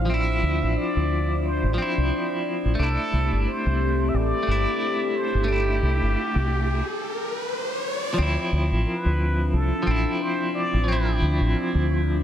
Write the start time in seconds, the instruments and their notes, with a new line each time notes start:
Already playing: fingered electric bass A1, ambient pad D4 C5, muted trumpet F5
0.05 clean electric guitar F3
0.10 clean electric guitar C4, ambient pad D5, muted trumpet E5
0.14 clean electric guitar E4
0.43 fingered electric bass D2
0.63 fingered electric bass A1
0.78 muted trumpet D5
0.96 fingered electric bass D2
1.46 muted trumpet C5
1.63 fingered electric bass A1
1.74 clean electric guitar F3 C4
1.79 clean electric guitar E4, muted trumpet C5
1.97 fingered electric bass C2
2.65 fingered electric bass A1
2.75 clean electric guitar A3
2.79 fingered electric bass C2, ambient pad C4 G4 A4 E5, clean electric guitar D4, muted trumpet A4, riser
2.83 clean electric guitar E4
3.13 fingered electric bass C2
3.32 fingered electric bass G1
3.48 muted trumpet C5
3.66 fingered electric bass C2
4.09 muted trumpet E5
4.14 fingered electric bass A1, muted trumpet D5
4.43 clean electric guitar A3
4.47 fingered electric bass G1, clean electric guitar D4
4.51 clean electric guitar E4
5.16 muted trumpet C5
5.34 fingered electric bass G1
5.44 clean electric guitar A3 D4
5.49 clean electric guitar E4, muted trumpet G4
5.83 fingered electric bass C2
6.02 fingered electric bass G1
6.35 fingered electric bass C2
8.14 clean electric guitar F3
8.18 fingered electric bass D2, ambient pad C4 D4 E5, clean electric guitar C4
8.22 clean electric guitar E4
8.52 fingered electric bass D2
8.72 fingered electric bass A1
8.87 muted trumpet B4
9.06 fingered electric bass D2
9.53 fingered electric bass C2, muted trumpet A4
9.83 clean electric guitar F3
9.87 fingered electric bass A1, clean electric guitar C4
9.91 clean electric guitar E4
10.21 muted trumpet C5
10.54 muted trumpet D5
10.74 fingered electric bass A1
10.84 clean electric guitar F3
10.88 clean electric guitar C4
10.92 clean electric guitar E4
11.22 fingered electric bass D2
11.41 fingered electric bass A1
11.75 fingered electric bass D2